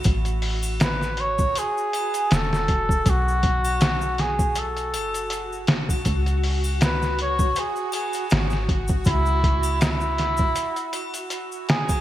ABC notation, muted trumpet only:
X:1
M:4/4
L:1/8
Q:"Swing 16ths" 1/4=80
K:C#m
V:1 name="Muted trumpet"
z2 B c G2 A2 | F3 G A3 z | z2 B c G G2 z | E2 E4 z G |]